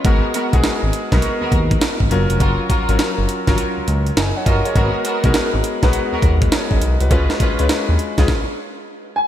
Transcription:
0.04 analog synth bass G#1, grand piano G#3 B3 F#4 A#4, string section B3 F#4 A#4, kick, closed hi-hat
0.34 string section B3 F#4 A#4, closed hi-hat
0.53 analog synth bass B1, grand piano G#3 B3 F#4 G#4, kick, closed hi-hat
0.64 snare, closed hi-hat
0.83 analog synth bass G#1
0.93 closed hi-hat
1.12 analog synth bass B1, grand piano G#3 B3 F#4 A#4, string section B3 F#4 A#4, kick, snare, closed hi-hat
1.22 closed hi-hat
1.41 analog synth bass D#2, string section B3 F#4 A#4
1.52 analog synth bass D#2, kick, closed hi-hat
1.71 kick, closed hi-hat
1.81 snare, closed hi-hat
2.00 analog synth bass G#1, kick
2.11 analog synth bass F#1, grand piano F#3 C#4 F4 A#4, closed hi-hat
2.30 analog synth bass F1, closed hi-hat
2.40 analog synth bass F#1, string section F4 F#4 A#4, kick, closed hi-hat
2.69 string section F4 F#4 A#4, kick, closed hi-hat
2.89 analog synth bass G#1, grand piano F#3 C#4 F4 A#4, closed hi-hat
2.99 snare, closed hi-hat
3.18 analog synth bass F#1
3.29 closed hi-hat
3.47 analog synth bass G#1, grand piano F#3 C#4 F4 A#4, string section F4 F#4 A#4, kick, snare, closed hi-hat
3.58 closed hi-hat
3.77 analog synth bass C#2
3.87 analog synth bass C#2, closed hi-hat
4.07 closed hi-hat
4.17 analog synth bass F#1, grand piano D#5 G#5, snare, closed hi-hat
4.36 grand piano C#5 F#5
4.46 analog synth bass G1, string section F4 F#4 A#4, grand piano A#4 D#5, kick, closed hi-hat
4.65 grand piano G#4 C#5, closed hi-hat
4.75 analog synth bass G#1, grand piano G#3 B3 F#4 A#4, string section B3 F#4 A#4, kick, closed hi-hat
5.05 string section B3 F#4 A#4, closed hi-hat
5.24 analog synth bass B1, grand piano G#3 B3 F#4 A#4, kick, closed hi-hat
5.34 snare, closed hi-hat
5.54 analog synth bass G#1
5.64 closed hi-hat
5.82 analog synth bass B1, grand piano G#3 B3 F#4 B4, string section B3 F#4 A#4, kick, snare, closed hi-hat
5.93 closed hi-hat
6.12 analog synth bass D#2, string section B3 F#4 A#4
6.22 analog synth bass D#2, kick, closed hi-hat
6.42 kick, closed hi-hat
6.52 grand piano G#4 C#5, snare, closed hi-hat
6.71 analog synth bass G#1, grand piano A#4 D#5, kick
6.82 analog synth bass B1, closed hi-hat
7.00 analog synth bass C2, grand piano F#4 B4, closed hi-hat
7.10 analog synth bass C#2, grand piano G#3 C#4 F4 B4, string section C#4 F4 B4, kick, closed hi-hat
7.30 snare
7.40 string section C#4 F4 B4, kick, closed hi-hat
7.59 analog synth bass C#2, grand piano G#3 C#4 F4 B4, closed hi-hat
7.69 snare, closed hi-hat
7.89 analog synth bass D#2
7.99 closed hi-hat
8.18 analog synth bass C#2, grand piano G#3 C#4 F4 G#4, string section C#4 F4 B4, kick, snare, closed hi-hat
8.28 kick, snare
9.16 grand piano G#5

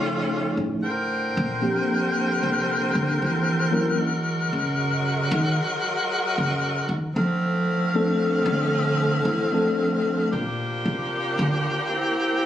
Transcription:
Already playing: upright bass C#3, saxophone section D#3 A3 C#4 F4, tine electric piano F3 A3 C#4 D#4 G#4
0.57 upright bass A2
0.83 saxophone section D3 A#4 C5 G5
1.37 upright bass A#2
1.61 tine electric piano F3 A#3 C4 D4 G4
2.43 upright bass C3
2.95 upright bass D3
3.22 upright bass E3
3.71 tine electric piano F#3 A#3 C#4 E4 A#4
3.99 saxophone section F#3 G#3 F#4
4.53 upright bass C#3
5.31 upright bass D#3
6.38 upright bass C#3
6.89 upright bass D#3
7.16 saxophone section D3 A3 C4 F5, upright bass F3
7.94 tine electric piano F3 A3 C4 D4 A4
8.46 upright bass D3
9.25 upright bass E3
9.52 tine electric piano F3 A3 C4 D4 A4
10.31 upright bass A#2, saxophone section F3 A#3 D4 G4
10.85 upright bass C3
11.39 upright bass D3
11.90 saxophone section E3 C4

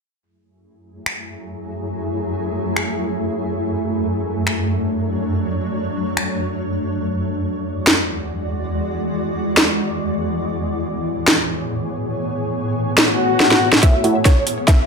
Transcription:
0.21 ambient pad F#2 F#3 A3 E4 G#4
1.06 finger snap
2.76 finger snap
3.61 ambient pad F#3 D4 C#5
4.47 finger snap
6.17 finger snap
6.81 ambient pad E2 E3 G#3 F#4 D5
7.87 finger snap, snare
9.57 finger snap, snare
10.42 ambient pad A2 B3 G#4 C#5
11.28 finger snap, snare
12.98 finger snap, snare, swell
13.40 snare
13.51 snare
13.73 snare
13.83 ambient pad F#2 F#3 A3 G#4 E5, supersaw synth A3 E4 F#4 C#5 F#5, synth pluck E5, kick, snare, closed hi-hat, riser
14.04 supersaw synth A3 E4 F#4 C#5 F#5, closed hi-hat
14.25 synth pluck C#5, kick, snare, closed hi-hat
14.47 closed hi-hat
14.68 synth pluck E5, kick, snare, closed hi-hat

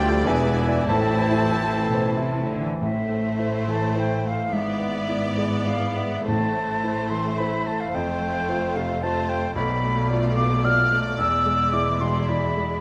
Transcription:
Already playing: grand piano D2 D4 C5 E5 G5, cello section D2, double bass section D2, tuba D2, trombone section F3 D4, french horn section G3, viola section A3 F4, clarinet D5, violin section D5 G5, flute G5
0.00 grand piano G4
0.07 grand piano F4 A4
0.25 double bass section E1, tuba E1, cello section E2, grand piano E2 G#4 E5 G#5, viola section E3 E4, trombone section E3 D4, french horn section G#3, clarinet B4, violin section G#5, flute G#5
0.47 grand piano B3
0.68 grand piano E4 D5
0.86 double bass section A1, tuba A1, cello section A2, grand piano A2 A5, trombone section E3 C4, french horn section A3, clarinet C5, violin section C5 A5, flute A5
0.90 grand piano A4 E5
1.10 grand piano A3
1.31 grand piano E4
1.52 cello section A2, grand piano C5
1.74 grand piano A4
1.86 cello section B2
1.95 grand piano C5
2.17 cello section C3, grand piano E4
2.39 grand piano A3
2.50 cello section D3
2.61 grand piano E3
2.81 double bass section A1, grand piano A2, cello section A2, timpani A2, viola section A3, violin section E4 C5, flute E5
3.09 grand piano A3
3.39 grand piano E4 C5
3.67 grand piano E3, flute A5
3.96 grand piano E4 C5, flute G5
4.25 grand piano A3, flute F5
4.53 double bass section G#1, grand piano G#2, cello section G#2, viola section B3, violin section E4 D5, flute E5
4.79 grand piano B3
5.08 grand piano E4 D5
5.37 grand piano G#3, flute D5
5.66 grand piano E4 D5, flute F5
5.97 grand piano B3, flute E5
6.26 double bass section A1, timpani A2, cello section A2, grand piano A2, viola section A3, violin section E4 C5, flute A5
6.56 grand piano A3
6.83 grand piano E4 C5
7.10 grand piano E3, flute C6
7.38 grand piano E4 C5, flute B5
7.67 grand piano A3, flute A5
7.80 flute F5
7.94 double bass section F1, grand piano F2, cello section F2, viola section A3, violin section F4 C5, flute G5
8.22 grand piano A3
8.49 grand piano F4 C5
8.76 grand piano C3, flute F5
9.02 viola section A3, violin section F4 C5, grand piano F4 C5, flute A5
9.29 grand piano A3, flute G5
9.56 grand piano B1, double bass section B1, cello section B2, viola section A3, violin section F4 D5, flute B5
9.83 grand piano A3
10.10 grand piano F4 D5
10.37 grand piano B2, flute D6
10.64 grand piano F4 D5, flute F6
10.91 grand piano A3
11.19 double bass section E1, grand piano E2, cello section E2, viola section G#3, violin section E4, flute E6
11.45 grand piano G#3
11.72 grand piano E4 D5, flute D6
12.01 grand piano B2, flute C6
12.29 grand piano E4 D5, flute B5
12.56 grand piano G#3

